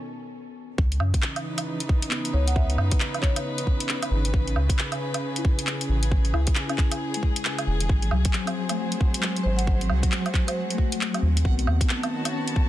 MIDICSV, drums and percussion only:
0, 0, Header, 1, 2, 480
1, 0, Start_track
1, 0, Key_signature, 4, "minor"
1, 0, Tempo, 444444
1, 846, Time_signature, 4, 2, 24, 8
1, 13703, End_track
2, 0, Start_track
2, 0, Title_t, "Drums"
2, 845, Note_on_c, 9, 36, 115
2, 953, Note_off_c, 9, 36, 0
2, 992, Note_on_c, 9, 42, 32
2, 1080, Note_on_c, 9, 77, 56
2, 1100, Note_off_c, 9, 42, 0
2, 1188, Note_off_c, 9, 77, 0
2, 1231, Note_on_c, 9, 36, 115
2, 1232, Note_on_c, 9, 42, 56
2, 1322, Note_on_c, 9, 39, 108
2, 1339, Note_off_c, 9, 36, 0
2, 1340, Note_off_c, 9, 42, 0
2, 1430, Note_off_c, 9, 39, 0
2, 1471, Note_on_c, 9, 42, 35
2, 1471, Note_on_c, 9, 77, 55
2, 1579, Note_off_c, 9, 42, 0
2, 1579, Note_off_c, 9, 77, 0
2, 1705, Note_on_c, 9, 42, 60
2, 1705, Note_on_c, 9, 77, 39
2, 1813, Note_off_c, 9, 42, 0
2, 1813, Note_off_c, 9, 77, 0
2, 1948, Note_on_c, 9, 42, 47
2, 2044, Note_on_c, 9, 36, 104
2, 2056, Note_off_c, 9, 42, 0
2, 2152, Note_off_c, 9, 36, 0
2, 2186, Note_on_c, 9, 42, 60
2, 2278, Note_on_c, 9, 39, 104
2, 2294, Note_off_c, 9, 42, 0
2, 2386, Note_off_c, 9, 39, 0
2, 2430, Note_on_c, 9, 42, 43
2, 2538, Note_off_c, 9, 42, 0
2, 2673, Note_on_c, 9, 42, 56
2, 2764, Note_on_c, 9, 36, 120
2, 2781, Note_off_c, 9, 42, 0
2, 2872, Note_off_c, 9, 36, 0
2, 2913, Note_on_c, 9, 42, 34
2, 3005, Note_on_c, 9, 77, 53
2, 3021, Note_off_c, 9, 42, 0
2, 3113, Note_off_c, 9, 77, 0
2, 3148, Note_on_c, 9, 42, 59
2, 3151, Note_on_c, 9, 36, 115
2, 3243, Note_on_c, 9, 39, 109
2, 3256, Note_off_c, 9, 42, 0
2, 3259, Note_off_c, 9, 36, 0
2, 3351, Note_off_c, 9, 39, 0
2, 3396, Note_on_c, 9, 42, 32
2, 3396, Note_on_c, 9, 77, 54
2, 3484, Note_on_c, 9, 39, 60
2, 3485, Note_on_c, 9, 36, 105
2, 3504, Note_off_c, 9, 42, 0
2, 3504, Note_off_c, 9, 77, 0
2, 3592, Note_off_c, 9, 39, 0
2, 3593, Note_off_c, 9, 36, 0
2, 3632, Note_on_c, 9, 42, 60
2, 3632, Note_on_c, 9, 77, 39
2, 3740, Note_off_c, 9, 42, 0
2, 3740, Note_off_c, 9, 77, 0
2, 3868, Note_on_c, 9, 42, 48
2, 3964, Note_on_c, 9, 36, 62
2, 3976, Note_off_c, 9, 42, 0
2, 4072, Note_off_c, 9, 36, 0
2, 4109, Note_on_c, 9, 42, 60
2, 4199, Note_on_c, 9, 39, 109
2, 4217, Note_off_c, 9, 42, 0
2, 4307, Note_off_c, 9, 39, 0
2, 4347, Note_on_c, 9, 42, 49
2, 4347, Note_on_c, 9, 77, 63
2, 4455, Note_off_c, 9, 42, 0
2, 4455, Note_off_c, 9, 77, 0
2, 4589, Note_on_c, 9, 42, 61
2, 4684, Note_on_c, 9, 36, 124
2, 4697, Note_off_c, 9, 42, 0
2, 4792, Note_off_c, 9, 36, 0
2, 4833, Note_on_c, 9, 42, 32
2, 4925, Note_on_c, 9, 77, 47
2, 4941, Note_off_c, 9, 42, 0
2, 5033, Note_off_c, 9, 77, 0
2, 5070, Note_on_c, 9, 36, 117
2, 5074, Note_on_c, 9, 42, 57
2, 5169, Note_on_c, 9, 39, 112
2, 5178, Note_off_c, 9, 36, 0
2, 5182, Note_off_c, 9, 42, 0
2, 5277, Note_off_c, 9, 39, 0
2, 5314, Note_on_c, 9, 42, 32
2, 5314, Note_on_c, 9, 77, 51
2, 5422, Note_off_c, 9, 42, 0
2, 5422, Note_off_c, 9, 77, 0
2, 5555, Note_on_c, 9, 42, 55
2, 5555, Note_on_c, 9, 77, 38
2, 5663, Note_off_c, 9, 42, 0
2, 5663, Note_off_c, 9, 77, 0
2, 5791, Note_on_c, 9, 42, 45
2, 5883, Note_on_c, 9, 36, 115
2, 5899, Note_off_c, 9, 42, 0
2, 5991, Note_off_c, 9, 36, 0
2, 6034, Note_on_c, 9, 42, 59
2, 6122, Note_on_c, 9, 39, 105
2, 6142, Note_off_c, 9, 42, 0
2, 6230, Note_off_c, 9, 39, 0
2, 6275, Note_on_c, 9, 42, 48
2, 6383, Note_off_c, 9, 42, 0
2, 6509, Note_on_c, 9, 42, 55
2, 6604, Note_on_c, 9, 36, 121
2, 6617, Note_off_c, 9, 42, 0
2, 6712, Note_off_c, 9, 36, 0
2, 6748, Note_on_c, 9, 42, 31
2, 6845, Note_on_c, 9, 77, 51
2, 6856, Note_off_c, 9, 42, 0
2, 6953, Note_off_c, 9, 77, 0
2, 6985, Note_on_c, 9, 42, 58
2, 6991, Note_on_c, 9, 36, 113
2, 7078, Note_on_c, 9, 39, 112
2, 7093, Note_off_c, 9, 42, 0
2, 7099, Note_off_c, 9, 36, 0
2, 7186, Note_off_c, 9, 39, 0
2, 7230, Note_on_c, 9, 42, 31
2, 7230, Note_on_c, 9, 77, 52
2, 7322, Note_on_c, 9, 39, 65
2, 7326, Note_on_c, 9, 36, 115
2, 7338, Note_off_c, 9, 42, 0
2, 7338, Note_off_c, 9, 77, 0
2, 7430, Note_off_c, 9, 39, 0
2, 7434, Note_off_c, 9, 36, 0
2, 7469, Note_on_c, 9, 42, 57
2, 7469, Note_on_c, 9, 77, 35
2, 7577, Note_off_c, 9, 42, 0
2, 7577, Note_off_c, 9, 77, 0
2, 7714, Note_on_c, 9, 42, 45
2, 7806, Note_on_c, 9, 36, 64
2, 7822, Note_off_c, 9, 42, 0
2, 7914, Note_off_c, 9, 36, 0
2, 7951, Note_on_c, 9, 42, 58
2, 8045, Note_on_c, 9, 39, 107
2, 8059, Note_off_c, 9, 42, 0
2, 8153, Note_off_c, 9, 39, 0
2, 8192, Note_on_c, 9, 42, 44
2, 8192, Note_on_c, 9, 77, 60
2, 8300, Note_off_c, 9, 42, 0
2, 8300, Note_off_c, 9, 77, 0
2, 8429, Note_on_c, 9, 42, 53
2, 8526, Note_on_c, 9, 36, 122
2, 8537, Note_off_c, 9, 42, 0
2, 8634, Note_off_c, 9, 36, 0
2, 8667, Note_on_c, 9, 42, 31
2, 8761, Note_on_c, 9, 77, 52
2, 8775, Note_off_c, 9, 42, 0
2, 8869, Note_off_c, 9, 77, 0
2, 8908, Note_on_c, 9, 42, 55
2, 8913, Note_on_c, 9, 36, 109
2, 8998, Note_on_c, 9, 39, 105
2, 9016, Note_off_c, 9, 42, 0
2, 9021, Note_off_c, 9, 36, 0
2, 9106, Note_off_c, 9, 39, 0
2, 9151, Note_on_c, 9, 42, 30
2, 9151, Note_on_c, 9, 77, 49
2, 9259, Note_off_c, 9, 42, 0
2, 9259, Note_off_c, 9, 77, 0
2, 9389, Note_on_c, 9, 42, 55
2, 9389, Note_on_c, 9, 77, 35
2, 9497, Note_off_c, 9, 42, 0
2, 9497, Note_off_c, 9, 77, 0
2, 9632, Note_on_c, 9, 42, 41
2, 9727, Note_on_c, 9, 36, 102
2, 9740, Note_off_c, 9, 42, 0
2, 9835, Note_off_c, 9, 36, 0
2, 9874, Note_on_c, 9, 42, 55
2, 9963, Note_on_c, 9, 39, 107
2, 9982, Note_off_c, 9, 42, 0
2, 10071, Note_off_c, 9, 39, 0
2, 10114, Note_on_c, 9, 42, 42
2, 10222, Note_off_c, 9, 42, 0
2, 10353, Note_on_c, 9, 42, 50
2, 10447, Note_on_c, 9, 36, 112
2, 10461, Note_off_c, 9, 42, 0
2, 10555, Note_off_c, 9, 36, 0
2, 10598, Note_on_c, 9, 42, 31
2, 10687, Note_on_c, 9, 77, 52
2, 10706, Note_off_c, 9, 42, 0
2, 10795, Note_off_c, 9, 77, 0
2, 10832, Note_on_c, 9, 36, 107
2, 10836, Note_on_c, 9, 42, 56
2, 10927, Note_on_c, 9, 39, 108
2, 10940, Note_off_c, 9, 36, 0
2, 10944, Note_off_c, 9, 42, 0
2, 11035, Note_off_c, 9, 39, 0
2, 11079, Note_on_c, 9, 42, 29
2, 11079, Note_on_c, 9, 77, 52
2, 11166, Note_on_c, 9, 36, 106
2, 11173, Note_on_c, 9, 39, 60
2, 11187, Note_off_c, 9, 42, 0
2, 11187, Note_off_c, 9, 77, 0
2, 11274, Note_off_c, 9, 36, 0
2, 11281, Note_off_c, 9, 39, 0
2, 11319, Note_on_c, 9, 42, 55
2, 11319, Note_on_c, 9, 77, 38
2, 11427, Note_off_c, 9, 42, 0
2, 11427, Note_off_c, 9, 77, 0
2, 11561, Note_on_c, 9, 42, 41
2, 11646, Note_on_c, 9, 36, 58
2, 11669, Note_off_c, 9, 42, 0
2, 11754, Note_off_c, 9, 36, 0
2, 11796, Note_on_c, 9, 42, 56
2, 11893, Note_on_c, 9, 39, 96
2, 11904, Note_off_c, 9, 42, 0
2, 12001, Note_off_c, 9, 39, 0
2, 12036, Note_on_c, 9, 42, 41
2, 12036, Note_on_c, 9, 77, 57
2, 12144, Note_off_c, 9, 42, 0
2, 12144, Note_off_c, 9, 77, 0
2, 12279, Note_on_c, 9, 42, 51
2, 12366, Note_on_c, 9, 36, 109
2, 12387, Note_off_c, 9, 42, 0
2, 12474, Note_off_c, 9, 36, 0
2, 12516, Note_on_c, 9, 42, 31
2, 12607, Note_on_c, 9, 77, 55
2, 12624, Note_off_c, 9, 42, 0
2, 12715, Note_off_c, 9, 77, 0
2, 12753, Note_on_c, 9, 36, 109
2, 12756, Note_on_c, 9, 42, 57
2, 12845, Note_on_c, 9, 39, 100
2, 12861, Note_off_c, 9, 36, 0
2, 12864, Note_off_c, 9, 42, 0
2, 12953, Note_off_c, 9, 39, 0
2, 12997, Note_on_c, 9, 42, 31
2, 12997, Note_on_c, 9, 77, 55
2, 13105, Note_off_c, 9, 42, 0
2, 13105, Note_off_c, 9, 77, 0
2, 13233, Note_on_c, 9, 42, 58
2, 13233, Note_on_c, 9, 77, 40
2, 13341, Note_off_c, 9, 42, 0
2, 13341, Note_off_c, 9, 77, 0
2, 13473, Note_on_c, 9, 42, 45
2, 13566, Note_on_c, 9, 36, 101
2, 13581, Note_off_c, 9, 42, 0
2, 13674, Note_off_c, 9, 36, 0
2, 13703, End_track
0, 0, End_of_file